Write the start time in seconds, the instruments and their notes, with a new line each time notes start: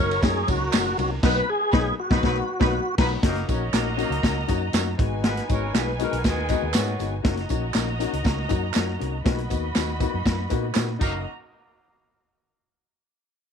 Already playing: fingered electric bass F#1, horn section A#3 C#4 F#4 C#5, violin section C#5 C#6
0.00 upright piano F#3 A#3 C#4 D#4 F#4, tonewheel organ A#4
0.11 ride
0.23 fingered electric bass F#2, upright piano F#3 A#3 C#4 D#4 F#4, tonewheel organ G#4, violin section A#4 A#5, kick, snare, ride, tambourine
0.47 fingered electric bass C#2, upright piano F#3 A#3 C#4 D#4 F#4, tonewheel organ F#4, kick, ride, tambourine
0.72 fingered electric bass F#1, upright piano F#3 A#3 C#4 D#4 F#4, tonewheel organ F#4, snare, clap, ride, tambourine
0.97 fingered electric bass C2, upright piano F#3 A#3 C#4 D#4 F#4, tonewheel organ F#4, ride, tambourine
1.22 fingered electric bass B1, horn section F#3 B3 D#4 B4, upright piano F#3 A#3 B3 D#4 F#4, violin section B4 B5, tonewheel organ B4, kick, snare, crash
1.50 tonewheel organ G#4
1.72 fingered electric bass B1, upright piano F#3 A#3 B3 D#4, horn section F#3 B3 D#4 B4, violin section B4 B5, kick, snare
2.00 tonewheel organ F#4
2.10 fingered electric bass B1, upright piano F#3 A#3 B3 D#4 F#4, horn section F#3 B3 D#4 B4, violin section B4 B5, kick, snare
2.22 fingered electric bass B1, upright piano F#3 A#3 B3 D#4 F#4, horn section F#3 B3 D#4 B4, violin section B4 B5, kick, snare
2.59 fingered electric bass B1, upright piano F#3 A#3 B3 D#4 F#4, horn section F#3 B3 D#4 B4, violin section B4 B5, kick, snare
2.98 fingered electric bass B1, upright piano F#3 A#3 B3 D#4 F#4 A#5, horn section F#3 B3 D#4 B4, violin section B4 B5, kick, snare, crash
3.22 fingered electric bass F#1, horn section F#3 A#3 D#4 A#4, upright piano A#3 C#4 D#4 F#4, violin section F#4 D#5 A#5, kick, snare, closed hi-hat
3.36 snare, closed hi-hat
3.48 fingered electric bass A#1, upright piano A#3 C#4 D#4 F#4, horn section A#3 C#4 F#4 C#5, kick, closed hi-hat, tambourine
3.73 fingered electric bass A#1, horn section F#3 A#3 D#4 A#4, upright piano A#3 C#4 D#4 F#4, snare, clap, closed hi-hat, tambourine
3.97 horn section F#3 A#3 D#4 A#4, upright piano A#3 C#4 D#4 F#4, closed hi-hat, tambourine
4.10 fingered electric bass C#2, closed hi-hat
4.22 fingered electric bass C#2, upright piano A#3 C#4 D#4 F#4, kick, snare, closed hi-hat, tambourine
4.48 fingered electric bass F#2, upright piano A#3 C#4 D#4 F#4, kick, closed hi-hat, tambourine
4.73 fingered electric bass F#2, upright piano A#3 C#4 D#4 F#4, snare, clap, closed hi-hat, tambourine
4.97 fingered electric bass G#1, upright piano G#3 B3 D#4 F#4, violin section D#4 B4 G#5, kick, closed hi-hat
5.23 horn section G#3 B3 F#4 B4, snare, closed hi-hat, tambourine
5.37 snare, closed hi-hat
5.48 fingered electric bass G#1, upright piano G#3 B3 D#4 F#4, horn section C#4 A#4 C#5, kick, closed hi-hat, tambourine
5.73 fingered electric bass B1, upright piano G#3 B3 D#4 F#4, horn section G#3 B3 F#4 B4, snare, clap, closed hi-hat, tambourine
5.99 upright piano G#3 B3 D#4 F#4, horn section A#3 F#4 A#4, closed hi-hat, tambourine
6.13 fingered electric bass B1, closed hi-hat
6.24 fingered electric bass D#2, horn section D#3 G#3 B3 G#4, upright piano G#3 B3 D#4 F#4, kick, snare, closed hi-hat, tambourine
6.49 upright piano G#3 B3 D#4 F#4, kick, closed hi-hat, tambourine
6.62 fingered electric bass D#2
6.74 fingered electric bass G#2, horn section D#3 F#3 B3 F#4, upright piano G#3 B3 D#4 F#4, snare, clap, closed hi-hat, tambourine
6.98 fingered electric bass G1, upright piano G#3 B3 D#4 F#4, closed hi-hat, tambourine
7.23 fingered electric bass F#1, upright piano A#3 C#4 D#4 F#4, violin section F#4 D#5 A#5, kick, snare, closed hi-hat
7.37 snare, closed hi-hat
7.49 fingered electric bass A#1, upright piano A#3 C#4 D#4 F#4, kick, closed hi-hat, tambourine
7.74 fingered electric bass A#1, upright piano A#3 C#4 D#4 F#4, snare, clap, closed hi-hat, tambourine
7.99 upright piano A#3 C#4 D#4 F#4, closed hi-hat, tambourine
8.13 fingered electric bass C#2, closed hi-hat
8.23 fingered electric bass C#2, upright piano A#3 C#4 D#4 F#4, kick, snare, closed hi-hat, tambourine
8.48 fingered electric bass F#2, upright piano A#3 C#4 D#4 F#4, kick, closed hi-hat, tambourine
8.74 fingered electric bass F#2, upright piano A#3 C#4 D#4 F#4, snare, clap, closed hi-hat, tambourine
8.99 fingered electric bass C2, upright piano A#3 C#4 D#4 F#4, closed hi-hat
9.24 fingered electric bass B1, upright piano A#3 B3 D#4 F#4, violin section F#4 D#5 B5, kick, snare, closed hi-hat, tambourine
9.38 closed hi-hat
9.49 fingered electric bass D#2, upright piano A#3 B3 D#4 F#4, kick, closed hi-hat, tambourine
9.75 fingered electric bass D#2, upright piano A#3 B3 D#4 F#4, snare, clap, closed hi-hat, tambourine
10.00 upright piano A#3 B3 D#4 F#4, kick, closed hi-hat, tambourine
10.14 fingered electric bass F#2
10.25 fingered electric bass F#2, upright piano A#3 B3 D#4 F4, kick, snare, closed hi-hat, tambourine
10.50 fingered electric bass A#2, upright piano A#3 B3 D#4 F#4, kick, closed hi-hat, tambourine
10.73 fingered electric bass A#2, upright piano A#3 B3 D#4 F#4, snare, clap, closed hi-hat, tambourine
10.98 fingered electric bass F#1, horn section F#3 A#3 D#4 A#4, upright piano A#3 C#4 D#4 F#4, violin section F#4 D#5 A#5, kick, crash, tambourine